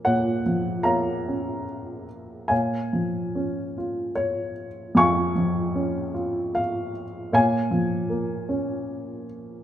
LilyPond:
<<
  \new Staff \with { instrumentName = "Upright piano" } { \time 3/4 \key fis \major \tempo 4 = 76 << { fis''4 ais''4 r4 | gis''2 cis''8 r8 | cis'''2 eis''8 r8 | gis''2. | } \\ { cis''4 <cis'' eis''>4. r8 | <cis'' eis''>2 r4 | <eis'' gis''>2 r4 | <cis'' eis''>2. | } >> }
  \new Staff \with { instrumentName = "Upright piano" } { \time 3/4 \key fis \major <ais, cis'>8 eis8 ais8 cis'4. | ais,8 eis8 cis'8 eis'4. | eis,8 eis8 cis'8 eis'4. | ais,8 eis8 ais8 cis'4. | }
>>